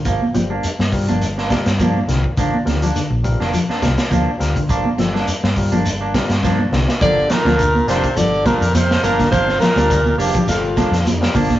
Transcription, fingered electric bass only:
X:1
M:4/4
L:1/16
Q:"Swing 16ths" 1/4=104
K:Gm
V:1 name="Fingered electric bass" clef=bass
G,,, z G,,,2 z G,,2 G,,,4 G,,3 C,, z | G,,, z D,,2 z B,,,2 F,,, z2 C,, z D,, z D,, z | G,,, z G,,,2 z G,,2 G,,,4 G,,3 C,, z | G,,,2 z D,,3 F,,, z G,,,3 F,,3 G,,,2 |
G,,,2 z D,,3 F,,, z G,,,3 F,,3 G,,,2 |]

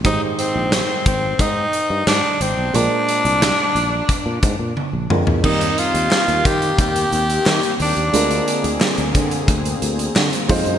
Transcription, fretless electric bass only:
X:1
M:4/4
L:1/16
Q:1/4=89
K:Bbmix
V:1 name="Fretless electric bass" clef=bass
A,,, z2 B,,,2 z A,,,2 A,,2 z G,, A,, z A,,, =B,,, | B,,, z2 C,,2 z B,,,2 z B,, A,, B,, z B,,, F,, =E,, | E,,2 z E,, z E,, E,2 E,,2 E,,2 E, z E,, E,, | D,,2 z D,, z D,, D,2 D,,2 D,,2 D, z F,, _G,, |]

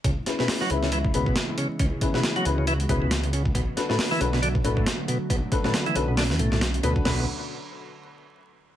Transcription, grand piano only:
X:1
M:4/4
L:1/16
Q:"Swing 16ths" 1/4=137
K:Bdor
V:1 name="Grand piano"
z2 [CEGB] [CEGB]2 z [CEGB] z3 [CEGB] z4 z | z2 [CEGB] [CEGB]2 z [CEGB] z3 [CEGB] z4 z | z2 [DFAB] [DFAB]2 z [DFAB] z3 [DFAB] z4 z | z2 [DFAB] [DFAB]2 z [DFAB] z6 z [DFAB]2 |
[DFAB]2 z12 z2 |]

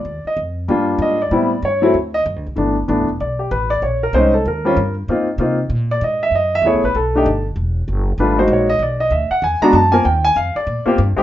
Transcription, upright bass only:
X:1
M:4/4
L:1/8
Q:"Swing" 1/4=192
K:Gphr
V:1 name="Upright bass" clef=bass
E,, z F,,2 G,,2 A,,2 | =A,,2 G,,2 D,,2 (3^F,, D,, C,, | G,,,2 (3=A,,, G,,, =E,,, =B,,,2 A,,,2 | B,,,2 C,,2 E,,2 G,,2 |
A,,2 C,2 B,,2 A,,2 | _G,,2 (3_F,, _D,, =A,,, =B,,,2 =G,,,2 | =E,,,2 ^F,,,2 ^G,,,2 ^A,,,2 | =B,,,2 D,, z =E,, z ^F,,2 |
E,,2 F,, z B,, z G,, z |]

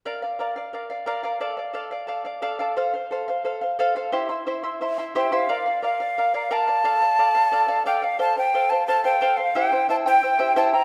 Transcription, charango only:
X:1
M:2/4
L:1/16
Q:1/4=88
K:Bblyd
V:1 name="Charango"
[Bdf] [df] [Bdf] [df] [Bdf] [df] [Bdf] [Bdf] | [Adf] [df] [Adf] [df] [Adf] [df] [Adf] [Adf] | [Acf] [cf] [Acf] [cf] [Acf] [cf] [Acf] [Acf] | [EGcec'] [Eec'] [Ecec'] [Eec'] [Ecec'] [Eec'] [EGcec'] [EGcec'] |
[Bdf] [df] [Bdf] [df] [Bdf] [Bdf] [Bdf] [df] | [Adf] [df] [Adf] [df] [Adf] [Adf] [Adf] [df] | [Acf] [cf] [Acf] [cf] [Acf] [Acf] [Acf] [cf] | [EGceg] [Ecg] [Eceg] [Ecg] [Eceg] [EGceg] [EGceg] [Ecg] |]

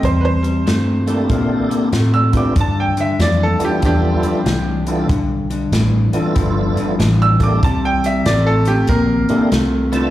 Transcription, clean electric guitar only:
X:1
M:4/4
L:1/8
Q:"Swing" 1/4=95
K:Cmix
V:1 name="Clean electric guitar" clef=bass
[C,G,] [C,G,] [C,A,] [C,A,] [C,B,] [C,B,] [C,A,] [C,A,] | [G,,D,] [G,,D,] [G,,E,] [G,,E,] [G,,F,] [G,,F,] [G,,E,] [G,,E,] | [G,,D,] [G,,D,] [G,,E,] [G,,E,] [G,,F,] [G,,F,] [G,,E,] [G,,E,] | [C,G,] [C,G,] [C,A,] [C,A,] [C,B,] [C,B,] [C,A,] [C,A,] |]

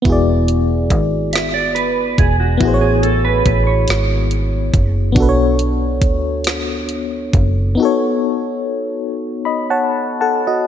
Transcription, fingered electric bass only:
X:1
M:6/8
L:1/8
Q:3/8=47
K:Bdor
V:1 name="Fingered electric bass" clef=bass
E,,,2 G,,,3 E,,, | A,,,2 A,,, G,,,2 F,,, | B,,,2 D,,3 F,,, | z6 |]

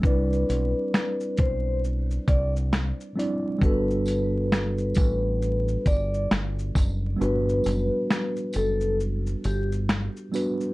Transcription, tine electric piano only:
X:1
M:4/4
L:1/8
Q:"Swing 16ths" 1/4=67
K:G
V:1 name="Tine electric piano"
[G,CDEd]6- [G,CDEd] [G,CDEd] | [G,B,DFA]8 | [G,B,DFB]6- [G,B,DFB] [G,B,DFB] |]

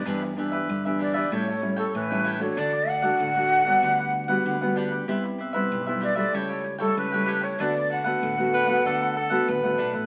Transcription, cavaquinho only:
X:1
M:4/4
L:1/16
Q:1/4=96
K:G
V:1 name="Cavaquinho"
[DGBe] z [DGBe] [GBe]2 [GBe] [DGBe] [GBe] [EA^cg] [Acg] z [Acg]2 [Acg] [EAcg] [Acg] | [DAdf] z [DAdf] [Adf]2 [Adf] [DAdf] [Adf] [DGBf] [GBf] z [GBf]2 [GBf] [DGBf] [GBf] | [GBce] z [GBce] [Bce]2 [Bce] [GBce] [Bce] [GA^cg] [Acg] z [Acg]2 [Acg] [GAcg] [Acg] | [DABf] z [DABf] [ABf]2 [ABf] [DABf] [ABf] [DABf] [ABf] z [ABf]2 [ABf] [DABf] [ABf] |]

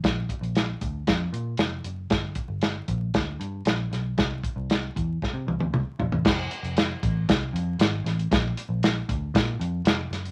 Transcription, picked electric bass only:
X:1
M:4/4
L:1/16
Q:1/4=116
K:F
V:1 name="Picked electric bass" clef=bass
B,,,2 z B,,,3 D,,2 F,,2 B,,2 F,,,2 _G,,,2 | G,,,2 z G,,,3 B,,,2 D,,2 G,,2 B,,,2 =B,,,2 | C,,2 z C,,3 E,,2 z C, C,, D,, C,, z B,,, A,,, | F,,,2 z F,,,3 A,,,2 C,,2 F,,2 _A,,,2 =A,,,2 |
B,,,2 z B,,,3 D,,2 B,,2 F,,2 F,,,2 _G,,,2 |]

